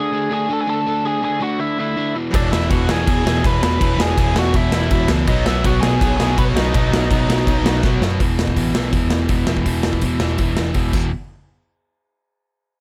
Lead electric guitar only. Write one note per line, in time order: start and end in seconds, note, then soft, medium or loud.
0.00 0.30 G#4 medium
0.00 0.33 G#5 loud
0.33 0.50 G#4 medium
0.33 0.53 G#5 medium
0.53 0.62 A4 medium
0.53 0.60 A5 medium
0.61 0.68 G#5 medium
0.69 1.03 A4 medium
0.69 1.03 A5 loud
1.05 1.23 G#4 medium
1.05 1.23 G#5 medium
1.24 1.41 G#4 medium
1.24 1.43 G#5 loud
1.42 1.59 F#4 medium
1.42 1.60 F#5 loud
1.60 1.77 E4 medium
1.60 1.79 E5 loud
1.80 2.14 E4 medium
1.80 2.14 E5 medium
2.35 2.52 D4 medium
2.35 2.52 D5 loud
2.52 2.69 E4 medium
2.52 2.71 E5 medium
2.70 2.87 F#4 medium
2.70 2.89 F#5 medium
2.90 3.24 G#4 medium
2.90 3.26 G#5 medium
3.27 3.44 G#4 medium
3.27 3.47 G#5 medium
3.46 3.62 B4 medium
3.46 3.62 B5 loud
3.63 3.97 B4 medium
3.63 4.00 B5 loud
4.01 4.17 G#4 medium
4.01 4.17 G#5 medium
4.19 4.35 G#4 medium
4.19 4.35 G#5 medium
4.39 4.54 F#4 medium
4.39 4.56 F#5 medium
4.56 4.72 E4 medium
4.56 4.72 E5 loud
4.74 5.08 E4 medium
4.74 5.07 E5 loud
5.28 5.45 D#4 medium
5.28 5.46 D#5 loud
5.46 5.63 E4 medium
5.46 5.65 E5 medium
5.65 5.82 F#4 medium
5.65 5.80 F#5 medium
5.81 6.15 G#4 medium
5.81 6.15 G#5 loud
6.17 6.36 G#4 medium
6.17 6.36 G#5 loud
6.38 6.45 B4 medium
6.38 6.43 B5 loud
6.56 6.73 D#4 medium
6.56 6.74 D#5 medium
6.75 7.80 D#4 medium
6.75 7.80 D#5 medium